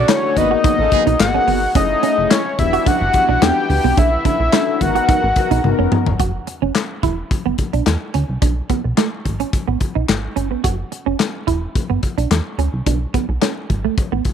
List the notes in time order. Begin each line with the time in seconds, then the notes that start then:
Already playing: C#3 D3 A3 B3 D5 F#5
0.08 A3 C#4 D4 E4 F#4 C#5, snare, clap, closed hi-hat
0.23 A3 D4 F#4 A4, muted clean electric guitar stroke
0.36 G#1 B2 D#3 A#3 B3 D#4 F#4 G#4 A#4 B4 D#5, kick, closed hi-hat
0.51 F#4
0.64 D#4, kick, closed hi-hat
0.79 A1 A3 C#4 F4 A4, muted clean electric guitar stroke
0.91 G#3 A#3 B3 D#4 F#4 G#4, kick, closed hi-hat
1.07 B1 D#4, closed hi-hat
1.20 G#1 A#3 B3 D#4 G#4 F#5, snare, clap, closed hi-hat
1.34 C#4
1.48 G1 B3, open hi-hat
1.75 F#1 E3 A3 C#4 E4 G#4 D#5, kick, closed hi-hat
2.03 C#4, closed hi-hat
2.18 F#1, muted clean electric guitar stroke
2.31 E4 C#5, snare, clap, closed hi-hat
2.45 muted clean electric guitar stroke
2.58 E1 G3 B3 D4 F#4 G4 E5, kick, closed hi-hat
2.73 F#4, closed hi-hat
2.86 D4 F#5, kick, closed hi-hat
3.01 G1, muted clean electric guitar stroke
3.13 kick, closed hi-hat
3.29 B1 D4
3.42 E2 B3 C#4 D4 F#4 G4 G5, snare, clap, closed hi-hat
3.69 D2 B3 D4 F#4 G4, muted clean electric guitar stroke, open hi-hat
3.84 C2 B3
3.97 B1 D3 A3 C#4 D4 E5, kick, closed hi-hat
4.25 D4, kick, closed hi-hat
4.40 B1, muted clean electric guitar stroke
4.53 C#4 D4 E4 F#4 A4, snare, clap, closed hi-hat
4.67 muted clean electric guitar stroke
4.80 G#1 D#3 G#3 B3 D#4 F#4 A#4 F#5, kick, closed hi-hat
4.95 F#4, closed hi-hat
5.08 D#4, kick, closed hi-hat
5.23 A1, muted clean electric guitar stroke
5.36 B3 D#4 F#4 A#4, kick, closed hi-hat
5.51 B1 D#4, closed hi-hat
5.64 G#1 B3 D#4 F#4 A#4, muted clean electric guitar stroke, high tom
5.79 F#1 C#4
5.92 B3, mid tom
6.06 G#1, floor tom
6.19 F#1 F#4, kick, closed hi-hat
6.47 muted clean electric guitar stroke, closed hi-hat
6.62 F#1 C#4
6.75 snare, clap, closed hi-hat
7.03 E1 E4, kick, closed hi-hat
7.31 kick, closed hi-hat
7.46 G1 B3
7.58 muted clean electric guitar stroke, kick, closed hi-hat
7.73 B1 D4, closed hi-hat
7.86 E2, snare, clap, closed hi-hat
8.14 D2 C#4, closed hi-hat
8.29 C2
8.42 B1 D4, kick, closed hi-hat
8.70 B3, kick, closed hi-hat
8.84 B1, muted clean electric guitar stroke
8.97 A3, snare, clap, closed hi-hat
9.25 G#1, muted clean electric guitar stroke, kick, closed hi-hat
9.40 C#4, closed hi-hat
9.53 kick, closed hi-hat
9.68 A1 B3
9.81 muted clean electric guitar stroke, kick, closed hi-hat
9.95 B1 D#4
10.08 G#1, muted clean electric guitar stroke, snare, clap, closed hi-hat
10.36 G1 C#4, closed hi-hat
10.51 B3
10.64 F#1 F#4, kick, closed hi-hat
10.92 muted clean electric guitar stroke, closed hi-hat
11.06 F#1 C#4
11.20 snare, clap, closed hi-hat
11.47 E1 E4, kick, closed hi-hat
11.75 kick, closed hi-hat
11.90 G1 B3
12.03 muted clean electric guitar stroke, kick, closed hi-hat
12.18 B1 D4, closed hi-hat
12.31 E2, snare, clap, closed hi-hat
12.58 D2 C#4, closed hi-hat
12.73 C2
12.86 B1 D4, kick, closed hi-hat
13.14 B3, kick, closed hi-hat
13.29 B1, muted clean electric guitar stroke
13.42 C#4, snare, clap, closed hi-hat
13.70 G#1, muted clean electric guitar stroke, kick, closed hi-hat
13.85 A3
13.98 kick, closed hi-hat
14.12 A1 B3
14.25 muted clean electric guitar stroke, kick, closed hi-hat